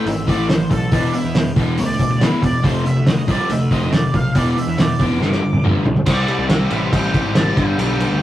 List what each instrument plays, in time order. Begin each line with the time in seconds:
0.06 picked electric bass G#1, overdriven electric guitar A2 E3, lead electric guitar E5, open hi-hat
0.28 overdriven electric guitar A2 E3 A3, lead electric guitar D5, kick, open hi-hat
0.39 picked electric bass A1
0.49 overdriven electric guitar A2 E3, lead electric guitar C5, snare, open hi-hat
0.71 picked electric bass B1, overdriven electric guitar A2 E3, lead electric guitar A4, kick, open hi-hat
0.92 picked electric bass E1, overdriven electric guitar E2 B2 E3, lead electric guitar D4, kick, open hi-hat
1.14 overdriven electric guitar E2 B2, lead electric guitar E4, open hi-hat
1.24 picked electric bass E2
1.35 overdriven electric guitar E2 B2, snare, open hi-hat
1.56 picked electric bass E1, overdriven electric guitar E2 B2 E3, kick, open hi-hat
1.78 picked electric bass D2, overdriven electric guitar E2 B2, lead electric guitar D5, open hi-hat
1.99 overdriven electric guitar E2 B2, kick, open hi-hat
2.10 picked electric bass D2
2.21 overdriven electric guitar E2 B2 E3, lead electric guitar E4, snare, open hi-hat
2.42 picked electric bass E1, overdriven electric guitar E2 B2, lead electric guitar D5, kick, open hi-hat
2.64 picked electric bass F1, overdriven electric guitar F2 C3 F3, lead electric guitar C5, kick, open hi-hat
2.86 overdriven electric guitar F2 C3, lead electric guitar E5, open hi-hat
2.96 picked electric bass D2
3.07 overdriven electric guitar F2 C3, lead electric guitar D#5, snare, open hi-hat
3.28 picked electric bass C2, overdriven electric guitar F2 C3 F3, lead electric guitar D5, kick, open hi-hat
3.49 picked electric bass D2, overdriven electric guitar F2 C3, lead electric guitar E5, open hi-hat
3.71 overdriven electric guitar F2 C3 F3, lead electric guitar D#5, kick, open hi-hat
3.82 picked electric bass F1
3.93 overdriven electric guitar F2 C3, lead electric guitar D5, snare, open hi-hat
4.14 picked electric bass B1, overdriven electric guitar F2 C3, lead electric guitar F5, kick, open hi-hat
4.35 picked electric bass E1, overdriven electric guitar E2 B2 E3, lead electric guitar D5, kick, open hi-hat
4.57 overdriven electric guitar E2 B2, lead electric guitar E5, open hi-hat
4.67 picked electric bass E2
4.78 overdriven electric guitar E2 B2, lead electric guitar D5, snare, open hi-hat
4.99 picked electric bass F1, overdriven electric guitar E2 B2 E3, lead electric guitar D6, kick, open hi-hat
5.20 picked electric bass G1, overdriven electric guitar G2 D3 F3 G3, lead electric guitar D6, snare
5.32 snare
5.42 overdriven electric guitar G2 D3
5.53 picked electric bass F1, high tom
5.64 overdriven electric guitar G2 D3 F3 G3, mid tom
5.85 picked electric bass B1, overdriven electric guitar G2 D3, floor tom
5.96 floor tom
6.06 picked electric bass C2, overdriven electric guitar C3 E3 G3 C4 E4 G4, lead electric guitar D5, kick, crash
6.28 overdriven electric guitar C3 E3 G3 C4 E4 G4, crash
6.39 picked electric bass C2
6.49 overdriven electric guitar C3 E3 G3 C4 E4 G4, lead electric guitar E5, snare, crash
6.70 picked electric bass A1, overdriven electric guitar C3 E3 G3 C4 E4 G4, lead electric guitar E5, crash
6.91 picked electric bass A1, overdriven electric guitar C3 E3 G3 C4 E4 G4, lead electric guitar G5, kick, crash
7.13 overdriven electric guitar C3 E3 G3 C4 E4 G4, kick, crash
7.24 picked electric bass G#1
7.35 overdriven electric guitar C3 E3 G3 C4 E4 G4, lead electric guitar A5, snare, crash
7.56 picked electric bass G1, overdriven electric guitar G2 D3 G3 B3 D4 G4, lead electric guitar G5, kick, crash
7.78 picked electric bass B1, overdriven electric guitar G2 D3 G3 B3 D4 G4, lead electric guitar G5, crash
7.99 overdriven electric guitar G2 D3 G3 B3 D4 G4, crash
8.12 picked electric bass D2